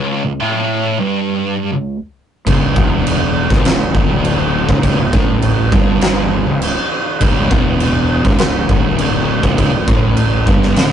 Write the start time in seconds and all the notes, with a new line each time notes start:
Already playing: C#2
0.24 C#2
0.40 A2
0.99 G2
1.73 C#2
2.47 C#1 C#2, kick, crash
2.76 E1 E2, kick
3.07 crash
3.50 C#1 C#2, kick, snare
3.65 C#1 C#2, snare, crash
3.95 D1 D2, kick
4.25 crash
4.69 C#1 C#2, kick
4.83 kick, crash
4.99 C#1 C#2
5.13 A1 A2, kick
5.42 crash
5.72 G1 G2, kick
6.01 snare, crash
6.47 C#1 C#2
6.62 crash
7.21 C#1 C#2, kick, crash
7.50 E1 E2, kick
7.80 crash
8.25 C#1 C#2, kick
8.38 C#1 C#2, snare, crash
8.69 D1 D2, kick
8.98 crash
9.43 C#1 C#2, kick
9.58 kick, crash
9.73 C#1 C#2
9.88 A1 A2, kick
10.17 crash
10.47 G1 G2, kick
10.62 snare
10.76 D1 D2, snare, crash